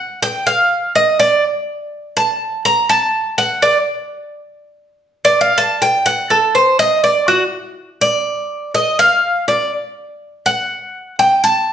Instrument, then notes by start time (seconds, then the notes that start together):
cuban tres
Already playing: F#5
0.22 G5
0.47 F5
0.95 D#5
1.20 D5
2.17 A5
2.65 A#5
2.89 A5
3.38 F#5
3.62 D5
5.25 D5
5.41 F5
5.58 A5
5.82 G5
6.06 F#5
6.30 A4
6.55 C5
6.79 D#5
7.04 D5
7.28 F#4
8.01 D5
8.75 D#5
8.99 F5
9.48 D5
10.46 F#5
11.19 G5
11.44 A5